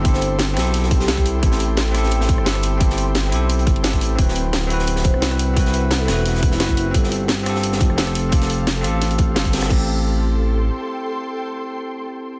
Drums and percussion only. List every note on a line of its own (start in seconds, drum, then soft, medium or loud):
0.05 kick loud
0.05 closed hi-hat medium
0.14 snare soft
0.21 closed hi-hat medium
0.39 snare loud
0.39 closed hi-hat loud
0.57 cross-stick soft
0.57 snare medium
0.57 closed hi-hat medium
0.74 snare soft
0.74 closed hi-hat medium
0.74 closed hi-hat loud
0.83 snare soft
0.91 kick loud
0.91 closed hi-hat medium
1.00 snare soft
1.08 snare loud
1.08 closed hi-hat medium
1.08 closed hi-hat loud
1.17 kick medium
1.17 closed hi-hat soft
1.26 closed hi-hat medium
1.26 open hi-hat medium
1.43 kick loud
1.43 closed hi-hat medium
1.51 snare soft
1.60 closed hi-hat medium
1.77 snare loud
1.77 closed hi-hat medium
1.95 cross-stick soft
1.95 snare soft
1.95 closed hi-hat medium
2.04 snare soft
2.11 closed hi-hat medium
2.21 snare medium
2.29 kick loud
2.29 closed hi-hat medium
2.38 cross-stick soft
2.46 snare loud
2.46 closed hi-hat medium
2.55 cross-stick soft
2.55 closed hi-hat soft
2.63 closed hi-hat medium
2.63 open hi-hat medium
2.80 kick loud
2.80 closed hi-hat loud
2.80 closed hi-hat medium
2.90 snare soft
2.97 closed hi-hat medium
3.15 snare loud
3.15 closed hi-hat loud
3.15 closed hi-hat medium
3.32 closed hi-hat medium
3.49 closed hi-hat medium
3.59 closed hi-hat soft
3.67 kick loud
3.67 closed hi-hat medium
3.76 closed hi-hat soft
3.84 snare loud
3.84 closed hi-hat medium
3.93 kick medium
3.93 closed hi-hat soft
4.01 closed hi-hat medium
4.01 open hi-hat medium
4.19 kick loud
4.19 closed hi-hat medium
4.19 closed hi-hat loud
4.28 snare soft
4.35 closed hi-hat medium
4.53 snare loud
4.53 closed hi-hat medium
4.70 closed hi-hat medium
4.79 snare soft
4.87 closed hi-hat medium
4.96 snare medium
5.04 kick loud
5.04 closed hi-hat medium
5.14 cross-stick soft
5.22 snare loud
5.22 closed hi-hat medium
5.31 cross-stick soft
5.31 closed hi-hat soft
5.39 closed hi-hat medium
5.39 open hi-hat medium
5.57 kick loud
5.57 closed hi-hat medium
5.57 closed hi-hat loud
5.65 snare soft
5.74 closed hi-hat medium
5.91 snare loud
5.91 closed hi-hat medium
6.08 cross-stick soft
6.08 snare loud
6.08 closed hi-hat medium
6.26 snare soft
6.26 closed hi-hat loud
6.26 closed hi-hat medium
6.35 snare soft
6.43 kick loud
6.43 closed hi-hat medium
6.51 snare medium
6.60 snare loud
6.60 closed hi-hat medium
6.68 kick medium
6.68 closed hi-hat soft
6.77 closed hi-hat medium
6.77 open hi-hat medium
6.94 kick loud
6.94 closed hi-hat medium
7.04 snare soft
7.12 closed hi-hat medium
7.28 snare loud
7.28 closed hi-hat medium
7.46 cross-stick soft
7.46 snare soft
7.46 closed hi-hat medium
7.55 snare soft
7.63 closed hi-hat medium
7.73 snare medium
7.81 kick loud
7.81 closed hi-hat medium
7.90 cross-stick soft
7.98 snare loud
7.98 closed hi-hat medium
8.07 cross-stick soft
8.07 closed hi-hat soft
8.15 closed hi-hat medium
8.15 open hi-hat medium
8.32 kick loud
8.32 closed hi-hat medium
8.32 closed hi-hat loud
8.42 snare soft
8.42 closed hi-hat soft
8.50 closed hi-hat medium
8.67 snare loud
8.67 closed hi-hat loud
8.84 closed hi-hat medium
9.01 snare soft
9.01 closed hi-hat medium
9.01 closed hi-hat loud
9.11 closed hi-hat soft
9.18 kick loud
9.18 closed hi-hat medium
9.36 snare loud
9.36 closed hi-hat medium
9.36 closed hi-hat loud
9.45 kick medium
9.45 closed hi-hat soft
9.53 snare medium
9.53 closed hi-hat medium
9.53 open hi-hat medium
9.58 snare medium
9.58 closed hi-hat medium
9.62 cross-stick soft
9.62 snare loud
9.62 closed hi-hat medium
9.70 kick loud
9.70 crash medium